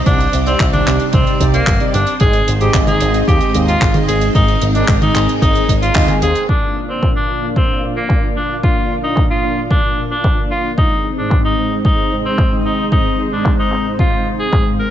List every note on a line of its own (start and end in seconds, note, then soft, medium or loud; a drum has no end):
0.00 2.17 G3 medium
0.00 2.17 C4 medium
0.00 4.31 C5 medium
0.00 2.16 D5 medium
0.06 0.26 C2 medium
0.06 0.20 C3 medium
0.06 0.20 C4 medium
0.06 0.37 D4 loud
0.06 0.20 D#4 medium
0.06 0.20 G4 medium
0.06 0.20 D5 medium
0.06 kick loud
0.06 closed hi-hat medium
0.20 closed hi-hat medium
0.33 0.53 C2 loud
0.33 closed hi-hat medium
0.46 0.83 C3 medium
0.46 0.84 C4 medium
0.46 0.67 C4 loud
0.46 0.83 D#4 medium
0.46 0.83 G4 medium
0.46 0.83 D5 loud
0.46 closed hi-hat medium
0.60 0.80 C2 loud
0.60 kick loud
0.60 clap loud
0.60 closed hi-hat medium
0.73 1.04 D4 loud
0.73 closed hi-hat medium
0.73 high tom medium
0.87 0.97 C2 loud
0.87 1.37 C3 medium
0.87 1.37 C4 medium
0.87 1.37 D#4 medium
0.87 1.37 G4 medium
0.87 1.37 D5 medium
0.87 clap medium
0.87 closed hi-hat loud
1.00 closed hi-hat medium
1.13 1.24 C2 medium
1.13 1.45 C4 medium
1.13 kick loud
1.13 closed hi-hat medium
1.27 closed hi-hat medium
1.40 1.60 C2 medium
1.40 1.54 C3 loud
1.40 1.54 C4 medium
1.40 1.54 D#4 medium
1.40 1.54 G4 medium
1.40 1.54 D5 loud
1.40 kick medium
1.40 closed hi-hat loud
1.54 1.85 A#3 loud
1.54 closed hi-hat medium
1.67 1.77 G1 loud
1.67 kick loud
1.67 clap loud
1.67 closed hi-hat medium
1.80 1.94 C3 medium
1.80 1.94 C4 medium
1.80 1.94 D#4 medium
1.80 1.94 G4 medium
1.80 1.94 D5 loud
1.80 closed hi-hat medium
1.94 2.04 G1 medium
1.94 2.15 D4 medium
1.94 closed hi-hat medium
2.07 closed hi-hat medium
2.20 2.41 G#1 loud
2.20 2.35 G#2 medium
2.20 6.45 G#3 medium
2.20 6.45 C4 medium
2.20 2.35 C4 medium
2.20 6.45 D#4 medium
2.20 2.35 D#4 medium
2.20 2.52 G#4 loud
2.20 2.35 G#4 medium
2.20 6.45 D#5 medium
2.20 2.35 D#5 medium
2.20 kick loud
2.20 closed hi-hat medium
2.33 closed hi-hat medium
2.48 2.68 G#1 loud
2.48 closed hi-hat medium
2.61 2.98 G#2 medium
2.61 2.98 C4 medium
2.61 2.98 D#4 medium
2.61 2.82 G4 loud
2.61 2.98 G#4 medium
2.61 2.98 D#5 loud
2.61 closed hi-hat medium
2.74 2.94 G#1 medium
2.74 kick loud
2.74 clap loud
2.74 closed hi-hat medium
2.87 3.19 G#4 medium
2.87 closed hi-hat medium
2.87 high tom medium
3.00 3.21 G#1 loud
3.00 3.51 G#2 medium
3.00 3.51 C4 medium
3.00 3.51 D#4 medium
3.00 3.51 G#4 medium
3.00 3.51 D#5 medium
3.00 closed hi-hat loud
3.14 closed hi-hat medium
3.28 3.38 D#2 medium
3.28 3.59 G4 loud
3.28 kick loud
3.28 closed hi-hat medium
3.41 closed hi-hat medium
3.54 3.75 D#2 medium
3.54 3.68 G#2 medium
3.54 3.69 C4 medium
3.54 3.69 D#4 medium
3.54 3.68 G#4 medium
3.54 3.69 D#5 loud
3.54 closed hi-hat medium
3.68 3.99 F4 loud
3.68 closed hi-hat medium
3.81 4.01 G#1 medium
3.81 kick loud
3.81 clap loud
3.81 closed hi-hat medium
3.94 4.09 G#2 medium
3.94 4.09 C4 medium
3.94 4.09 D#4 medium
3.94 4.09 G#4 medium
3.94 4.09 D#5 loud
3.94 closed hi-hat medium
3.94 high tom medium
4.08 4.28 G#1 medium
4.08 4.29 G#4 medium
4.08 closed hi-hat medium
4.21 closed hi-hat medium
4.35 4.55 G#1 medium
4.35 4.49 G#2 medium
4.35 4.49 C4 medium
4.35 4.66 D#4 loud
4.35 4.49 D#4 medium
4.35 4.49 G#4 medium
4.35 6.47 A#4 medium
4.35 4.49 D#5 medium
4.35 kick loud
4.35 closed hi-hat medium
4.48 closed hi-hat medium
4.62 4.82 G#1 medium
4.62 closed hi-hat loud
4.75 5.12 G#2 medium
4.75 5.12 C4 medium
4.75 4.96 D4 medium
4.75 5.12 D#4 medium
4.75 5.12 G#4 medium
4.75 5.12 D#5 loud
4.75 closed hi-hat medium
4.88 5.09 G#1 loud
4.88 kick loud
4.88 clap loud
4.88 closed hi-hat medium
5.02 5.33 D#4 loud
5.02 closed hi-hat medium
5.02 high tom medium
5.15 5.25 G#1 medium
5.15 5.66 G#2 medium
5.15 5.66 C4 medium
5.15 5.66 D#4 medium
5.15 5.66 G#4 medium
5.15 5.66 D#5 medium
5.15 clap medium
5.15 closed hi-hat loud
5.29 closed hi-hat medium
5.42 5.52 G#1 medium
5.42 5.73 D#4 loud
5.42 kick loud
5.42 closed hi-hat medium
5.55 closed hi-hat medium
5.69 5.89 G#1 medium
5.69 kick medium
5.69 closed hi-hat loud
5.82 6.13 F4 loud
5.82 closed hi-hat medium
5.94 6.06 D#2 loud
5.94 6.07 G#2 medium
5.94 6.07 C4 medium
5.94 6.07 D#4 medium
5.94 6.07 G#4 medium
5.94 6.07 D#5 medium
5.94 kick loud
5.94 clap loud
5.94 closed hi-hat medium
6.08 6.20 G#2 medium
6.08 6.20 C4 medium
6.08 6.20 D#4 medium
6.08 6.20 G#4 medium
6.08 6.20 G#5 medium
6.08 closed hi-hat medium
6.08 high tom medium
6.22 6.32 D#2 loud
6.22 6.46 C4 medium
6.22 6.46 D#4 medium
6.22 6.43 G#4 medium
6.22 6.46 G#4 medium
6.22 6.46 C5 medium
6.22 closed hi-hat medium
6.35 closed hi-hat medium
6.49 6.63 A#2 medium
6.49 10.74 A#3 medium
6.49 6.63 A#3 medium
6.49 6.80 D4 medium
6.49 6.63 D4 medium
6.49 10.74 D4 medium
6.49 10.74 F4 medium
6.49 6.63 F4 medium
6.49 10.74 D5 medium
6.49 6.63 D5 medium
6.49 10.74 F5 medium
6.49 kick loud
6.49 closed hi-hat medium
6.62 closed hi-hat soft
6.76 closed hi-hat medium
6.89 7.26 A#2 medium
6.89 7.26 A#3 medium
6.89 7.10 C4 medium
6.89 7.26 D4 medium
6.89 7.26 F4 medium
6.89 7.26 D5 medium
6.89 closed hi-hat medium
7.03 kick loud
7.03 clap loud
7.16 7.47 D4 medium
7.29 7.80 A#2 medium
7.29 7.80 A#3 medium
7.29 7.80 D4 medium
7.29 7.80 F4 medium
7.29 7.80 D5 medium
7.29 closed hi-hat medium
7.43 closed hi-hat medium
7.56 7.88 C4 medium
7.56 kick loud
7.56 closed hi-hat medium
7.83 7.97 A#2 medium
7.83 7.97 A#3 medium
7.83 7.97 D4 medium
7.83 7.97 F4 medium
7.83 7.97 D5 loud
7.83 closed hi-hat medium
7.96 8.28 A#3 medium
7.96 closed hi-hat medium
8.10 kick loud
8.10 clap loud
8.23 8.37 A#2 medium
8.23 8.37 A#3 medium
8.23 8.37 D4 medium
8.23 8.37 F4 medium
8.23 8.37 D5 loud
8.23 closed hi-hat soft
8.36 8.57 D4 medium
8.36 closed hi-hat medium
8.49 closed hi-hat medium
8.63 8.77 A#2 medium
8.63 8.77 A#3 medium
8.63 8.77 D4 medium
8.63 8.95 F4 medium
8.63 8.77 F4 medium
8.63 8.77 D5 medium
8.63 kick loud
8.63 closed hi-hat medium
8.76 closed hi-hat soft
8.91 closed hi-hat medium
9.03 9.41 A#2 medium
9.03 9.41 A#3 medium
9.03 9.41 D4 medium
9.03 9.24 D#4 medium
9.03 9.41 F4 medium
9.03 9.41 D5 loud
9.03 closed hi-hat medium
9.17 kick loud
9.17 clap loud
9.30 9.62 F4 medium
9.43 9.94 A#2 medium
9.43 9.94 A#3 medium
9.43 9.94 D4 medium
9.43 9.94 F4 medium
9.43 9.94 D5 medium
9.43 closed hi-hat medium
9.58 closed hi-hat medium
9.70 10.02 D4 medium
9.70 kick loud
9.70 closed hi-hat medium
9.98 10.11 A#2 medium
9.98 10.11 A#3 medium
9.98 10.11 D4 medium
9.98 10.11 F4 medium
9.98 10.11 D5 loud
9.98 closed hi-hat medium
10.11 10.42 D4 medium
10.11 closed hi-hat medium
10.24 kick loud
10.24 clap loud
10.24 closed hi-hat medium
10.38 10.52 A#2 medium
10.38 10.52 A#3 medium
10.38 10.52 D4 medium
10.38 10.52 F4 medium
10.38 10.51 D5 loud
10.38 closed hi-hat soft
10.51 10.72 F4 medium
10.51 closed hi-hat medium
10.65 closed hi-hat medium
10.78 10.92 G#2 medium
10.78 10.92 G#3 medium
10.78 14.90 G#3 medium
10.78 14.90 C4 medium
10.78 10.92 C4 medium
10.78 14.90 D#4 medium
10.78 11.09 D#4 medium
10.78 10.92 D#4 medium
10.78 14.90 C5 medium
10.78 10.92 C5 medium
10.78 14.90 D#5 medium
10.78 kick loud
10.92 closed hi-hat soft
11.04 closed hi-hat medium
11.18 11.55 G#2 medium
11.18 11.55 G#3 medium
11.18 11.55 C4 medium
11.18 11.39 D4 medium
11.18 11.55 D#4 medium
11.18 11.55 C5 loud
11.18 closed hi-hat medium
11.31 kick loud
11.31 clap loud
11.31 closed hi-hat medium
11.45 11.76 D#4 medium
11.58 12.09 G#2 medium
11.58 12.08 G#3 medium
11.58 12.08 C4 medium
11.58 12.09 D#4 medium
11.58 12.08 C5 medium
11.58 closed hi-hat medium
11.71 closed hi-hat medium
11.85 12.16 D#4 medium
11.85 kick loud
11.85 closed hi-hat medium
12.12 12.26 G#2 medium
12.12 12.26 G#3 medium
12.12 12.26 C4 medium
12.12 12.26 D#4 medium
12.12 12.26 C5 loud
12.12 closed hi-hat medium
12.25 12.56 C4 medium
12.25 closed hi-hat medium
12.38 kick loud
12.38 clap loud
12.52 12.66 G#2 medium
12.52 12.66 G#3 medium
12.52 12.66 C4 medium
12.52 12.66 D#4 medium
12.52 12.66 C5 medium
12.52 closed hi-hat soft
12.65 12.86 D#4 medium
12.65 closed hi-hat medium
12.79 closed hi-hat medium
12.92 13.06 G#2 medium
12.92 13.06 G#3 medium
12.92 13.06 C4 medium
12.92 13.23 D#4 medium
12.92 13.06 D#4 medium
12.92 13.06 C5 medium
12.92 kick loud
12.92 closed hi-hat medium
13.05 closed hi-hat medium
13.19 closed hi-hat medium
13.31 13.69 G#2 medium
13.31 13.69 G#3 medium
13.31 13.69 C4 medium
13.31 13.53 D4 medium
13.31 13.69 D#4 medium
13.31 13.69 C5 loud
13.31 closed hi-hat medium
13.46 kick loud
13.46 clap loud
13.59 13.90 D#4 medium
13.72 14.23 G#2 medium
13.72 14.23 G#3 medium
13.72 14.23 C4 medium
13.72 14.23 D#4 medium
13.72 14.23 C5 medium
13.72 clap medium
13.72 closed hi-hat medium
13.85 closed hi-hat medium
13.99 14.30 F4 medium
13.99 kick loud
13.99 closed hi-hat medium
14.13 closed hi-hat soft
14.26 closed hi-hat medium
14.39 14.70 G#4 medium
14.39 closed hi-hat medium
14.52 14.64 G#2 medium
14.52 14.64 G#3 medium
14.52 14.64 C4 medium
14.52 14.64 D#4 medium
14.52 14.64 C5 medium
14.52 kick loud
14.52 clap loud
14.52 closed hi-hat medium
14.66 14.78 G#2 medium
14.66 14.78 G#3 medium
14.66 14.78 C4 medium
14.66 14.78 D#4 medium
14.66 14.78 F5 medium
14.66 closed hi-hat soft
14.79 14.90 G#3 medium
14.79 14.90 C4 medium
14.79 14.90 D#4 medium
14.79 14.90 A#4 medium
14.79 closed hi-hat medium